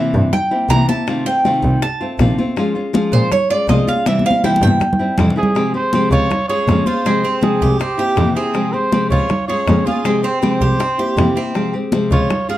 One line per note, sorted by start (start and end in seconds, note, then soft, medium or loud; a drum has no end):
0.00 0.32 C3 medium
0.00 0.32 E3 medium
0.00 0.32 A#3 medium
0.00 0.32 C4 medium
0.00 0.33 E4 medium
0.00 0.29 E5 medium
0.14 0.22 G2 medium
0.14 high bongo soft
0.14 high conga soft
0.33 0.85 G5 medium
0.33 muted nylon-string guitar stroke medium
0.33 high bongo medium
0.33 high conga soft
0.33 low conga medium
0.51 0.69 A#3 soft
0.51 0.69 C4 soft
0.51 0.69 E4 soft
0.51 high bongo soft
0.51 high conga soft
0.69 0.77 C2 medium
0.69 0.88 C3 medium
0.69 0.88 E3 medium
0.69 0.88 A#3 medium
0.69 0.88 C4 medium
0.69 0.87 E4 medium
0.69 0.88 A#5 loud
0.69 high bongo medium
0.69 low bongo medium
0.69 high conga medium
0.88 1.07 A#3 soft
0.88 1.07 C4 soft
0.88 1.06 E4 soft
0.88 1.24 A5 medium
0.88 high bongo soft
0.88 high conga medium
1.07 1.25 C3 medium
1.07 1.25 D#3 medium
1.07 1.26 A3 medium
1.07 1.26 C4 medium
1.07 1.25 F4 medium
1.07 high bongo medium
1.07 high conga soft
1.26 1.45 A3 soft
1.26 1.44 C4 soft
1.26 1.44 F4 soft
1.26 1.78 G5 loud
1.26 high conga soft
1.45 1.81 C3 medium
1.45 1.81 D#3 medium
1.45 1.82 A3 medium
1.45 1.82 C4 medium
1.45 1.82 F4 medium
1.45 high bongo medium
1.45 high conga medium
1.63 1.71 C2 loud
1.63 high bongo soft
1.63 high conga soft
1.82 2.35 A5 medium
1.82 muted nylon-string guitar stroke medium
1.82 high bongo medium
1.82 high conga soft
2.01 2.19 A3 soft
2.01 2.19 C4 soft
2.01 2.19 F4 soft
2.01 high bongo soft
2.01 high conga soft
2.19 2.27 A#1 medium
2.19 2.37 C3 medium
2.19 2.37 D#3 medium
2.19 2.38 A3 medium
2.19 2.38 C4 medium
2.19 2.37 F4 medium
2.19 high bongo medium
2.19 low bongo medium
2.19 high conga medium
2.38 2.57 A3 soft
2.38 2.57 C4 soft
2.38 2.56 F4 medium
2.38 high bongo soft
2.38 high conga medium
2.56 2.75 F3 medium
2.56 2.75 G#3 medium
2.56 2.75 C#4 medium
2.56 2.74 F4 medium
2.56 high bongo medium
2.56 high conga soft
2.75 2.93 G#3 soft
2.75 2.93 C#4 soft
2.75 2.93 F4 soft
2.75 high conga soft
2.93 3.30 F3 medium
2.93 3.30 G#3 medium
2.93 3.30 C#4 medium
2.93 3.31 F4 medium
2.93 high bongo medium
2.93 high conga loud
3.12 3.20 A#2 medium
3.12 3.31 C5 medium
3.12 high bongo soft
3.12 high conga soft
3.31 3.50 C#5 medium
3.31 muted nylon-string guitar stroke medium
3.31 high bongo medium
3.31 high conga soft
3.31 low conga medium
3.50 3.68 G#3 soft
3.50 3.68 C#4 soft
3.50 3.68 F4 soft
3.50 3.69 D5 medium
3.50 high bongo soft
3.50 high conga soft
3.68 3.76 C2 medium
3.68 3.87 F3 medium
3.68 3.87 G#3 medium
3.68 3.87 C#4 medium
3.68 3.86 F4 medium
3.68 3.87 D#5 medium
3.68 high bongo medium
3.68 low bongo medium
3.68 high conga medium
3.87 4.06 G#3 soft
3.87 4.06 C#4 soft
3.87 4.06 F4 soft
3.87 4.06 F5 medium
3.87 high bongo soft
3.87 high conga medium
4.06 4.24 C3 medium
4.06 4.24 E3 medium
4.06 4.25 G3 medium
4.06 4.24 C4 medium
4.06 4.23 E4 medium
4.06 4.25 E5 medium
4.06 high bongo medium
4.06 high conga medium
4.19 high conga medium
4.25 4.43 G3 soft
4.25 4.43 C4 soft
4.25 4.43 E4 soft
4.25 4.44 F5 loud
4.31 high conga medium
4.44 4.80 C3 medium
4.44 4.80 E3 medium
4.44 4.80 G3 medium
4.44 4.81 C4 medium
4.44 4.81 E4 medium
4.44 4.61 G5 medium
4.44 high bongo medium
4.44 low conga medium
4.56 high conga medium
4.61 4.69 G2 medium
4.61 5.15 G5 loud
4.61 high bongo soft
4.67 high conga medium
4.80 muted nylon-string guitar stroke medium
4.80 high bongo medium
4.80 low conga medium
4.93 low conga medium
4.99 5.18 G3 soft
4.99 5.18 C4 soft
4.99 5.18 E4 soft
4.99 high bongo soft
5.18 5.26 F2 medium
5.18 5.36 C3 medium
5.18 5.37 E3 medium
5.18 5.36 G3 medium
5.18 5.36 C4 medium
5.18 5.34 E4 medium
5.18 high bongo medium
5.18 low bongo medium
5.18 low conga medium
5.30 low conga medium
5.36 5.56 G3 soft
5.36 5.55 C4 soft
5.36 5.55 E4 soft
5.36 5.72 G#4 loud
5.36 high bongo soft
5.43 low conga medium
5.55 5.74 C3 medium
5.55 5.74 F3 medium
5.55 5.74 G#3 medium
5.55 5.74 C4 medium
5.55 5.73 G4 medium
5.55 high bongo medium
5.74 5.93 G#3 soft
5.74 5.93 C4 soft
5.74 5.92 G4 soft
5.74 6.10 C5 loud
5.74 high conga soft
5.93 6.30 C3 medium
5.93 6.30 F3 medium
5.93 6.30 G#3 medium
5.93 6.31 C4 medium
5.93 6.31 G4 medium
5.93 high bongo medium
5.93 high conga medium
6.11 6.19 C#2 medium
6.11 6.49 F4 medium
6.11 6.46 C#5 loud
6.11 high conga soft
6.31 muted nylon-string guitar stroke medium
6.31 high bongo medium
6.31 high conga soft
6.31 low conga medium
6.49 6.68 G#3 soft
6.49 6.68 C#4 soft
6.49 6.67 F4 medium
6.49 6.86 G#4 medium
6.49 6.88 C#5 loud
6.49 high conga soft
6.67 6.75 F2 medium
6.67 6.86 C#3 medium
6.67 6.86 F3 medium
6.67 6.87 G#3 medium
6.67 6.86 C#4 medium
6.67 6.85 F4 medium
6.67 high bongo medium
6.67 low bongo medium
6.67 high conga medium
6.86 7.05 G#3 soft
6.86 7.05 C#4 soft
6.86 7.04 F4 soft
6.86 7.05 F4 medium
6.86 7.42 C5 loud
6.86 high conga medium
7.05 7.23 C3 medium
7.05 7.24 F3 medium
7.05 7.24 G#3 medium
7.05 7.23 C4 medium
7.05 7.22 G4 medium
7.05 high bongo medium
7.05 high conga soft
7.23 7.41 G#3 soft
7.23 7.41 C4 soft
7.23 7.61 C4 medium
7.23 7.42 G4 soft
7.23 high bongo soft
7.23 high conga soft
7.41 7.78 C3 medium
7.41 7.79 F3 medium
7.41 7.79 G#3 medium
7.41 7.78 C4 medium
7.41 7.80 G#4 medium
7.41 high bongo medium
7.41 high conga loud
7.62 7.70 C2 medium
7.62 7.80 G4 medium
7.62 high conga soft
7.78 7.99 C4 medium
7.78 8.35 G4 loud
7.78 muted nylon-string guitar stroke medium
7.78 high bongo medium
7.78 high conga soft
7.97 8.16 A#3 soft
7.97 8.16 C4 soft
7.97 8.16 E4 medium
7.97 8.36 G4 medium
7.97 high bongo soft
7.97 high conga soft
8.16 8.26 F2 medium
8.16 8.35 C3 medium
8.16 8.35 E3 medium
8.16 8.35 A#3 medium
8.16 8.35 C4 medium
8.16 8.34 E4 medium
8.16 high bongo medium
8.16 low bongo medium
8.16 high conga medium
8.35 8.54 A#3 soft
8.35 8.54 C4 soft
8.35 8.73 C4 medium
8.35 8.54 E4 soft
8.35 8.74 G#4 medium
8.35 high bongo soft
8.35 high conga soft
8.54 8.73 C3 medium
8.54 8.73 F3 medium
8.54 8.73 G#3 medium
8.54 8.72 C4 medium
8.54 8.72 G4 medium
8.54 high bongo medium
8.54 high conga soft
8.73 8.91 G#3 soft
8.73 8.92 C4 soft
8.73 8.92 G4 soft
8.73 9.09 C5 loud
8.73 high conga soft
8.92 9.29 C3 medium
8.92 9.28 F3 medium
8.92 9.29 G#3 medium
8.92 9.29 C4 medium
8.92 9.30 G4 medium
8.92 high bongo medium
8.92 high conga medium
9.10 9.19 C#2 medium
9.10 9.48 F4 medium
9.10 9.46 C#5 loud
9.10 high conga soft
9.29 muted nylon-string guitar stroke medium
9.29 high bongo medium
9.29 high conga soft
9.29 low conga medium
9.48 9.67 G#3 soft
9.48 9.67 C#4 soft
9.48 9.67 F4 medium
9.48 9.86 G#4 medium
9.48 9.88 C#5 medium
9.48 high conga soft
9.67 9.76 F2 medium
9.67 9.86 C#3 medium
9.67 9.86 F3 medium
9.67 9.86 G#3 medium
9.67 9.85 C#4 medium
9.67 9.84 F4 medium
9.67 high bongo medium
9.67 low bongo medium
9.67 high conga medium
9.85 10.04 G#3 soft
9.85 10.04 C#4 soft
9.85 10.04 F4 medium
9.85 10.05 F4 medium
9.85 10.23 G#4 medium
9.85 high conga medium
10.04 10.23 C3 medium
10.04 10.23 F3 medium
10.04 10.23 G#3 medium
10.04 10.24 G#3 medium
10.04 10.23 C4 medium
10.04 10.22 G4 medium
10.04 high bongo medium
10.04 high conga soft
10.23 10.42 G#3 soft
10.23 10.42 C4 soft
10.23 10.61 C4 medium
10.23 10.42 G4 soft
10.23 10.41 C5 medium
10.23 high bongo soft
10.23 high conga soft
10.42 10.78 C3 medium
10.42 10.79 F3 medium
10.42 10.79 G#3 medium
10.42 10.79 C4 medium
10.42 10.80 G4 medium
10.42 11.32 C5 medium
10.42 high bongo medium
10.42 high conga loud
10.61 10.69 C2 medium
10.61 10.80 G4 medium
10.61 high conga soft
10.79 10.98 C4 medium
10.79 muted nylon-string guitar stroke medium
10.79 high bongo medium
10.79 high conga soft
10.98 11.17 A#3 soft
10.98 11.17 C4 soft
10.98 11.17 E4 soft
10.98 11.36 G4 medium
10.98 high bongo soft
10.98 high conga soft
11.17 11.25 F2 medium
11.17 11.35 C3 medium
11.17 11.36 E3 medium
11.17 11.36 A#3 medium
11.17 11.35 C4 medium
11.17 11.34 E4 medium
11.17 high bongo medium
11.17 low bongo medium
11.17 high conga medium
11.35 11.55 A#3 soft
11.35 11.55 C4 soft
11.35 11.73 C4 medium
11.35 11.54 E4 soft
11.35 high bongo soft
11.35 high conga soft
11.54 11.73 C3 medium
11.54 11.73 F3 medium
11.54 11.73 G#3 medium
11.54 11.73 C4 medium
11.54 11.72 G4 medium
11.54 high bongo medium
11.54 high conga soft
11.73 11.92 G#3 soft
11.73 11.92 C4 soft
11.73 11.92 G4 soft
11.73 high conga soft
11.92 12.29 C3 medium
11.92 12.29 F3 medium
11.92 12.29 G#3 medium
11.92 12.30 C4 medium
11.92 12.30 G4 medium
11.92 high bongo medium
11.92 high conga medium
12.11 12.19 C#2 medium
12.11 12.48 F4 medium
12.11 12.47 C#5 medium
12.11 high conga soft
12.30 muted nylon-string guitar stroke medium
12.30 high bongo medium
12.30 high conga soft
12.30 low conga medium
12.49 12.58 G#3 soft
12.49 12.58 C#4 soft
12.49 12.58 F4 soft
12.49 12.58 G#4 medium
12.49 12.58 F5 medium
12.49 high conga soft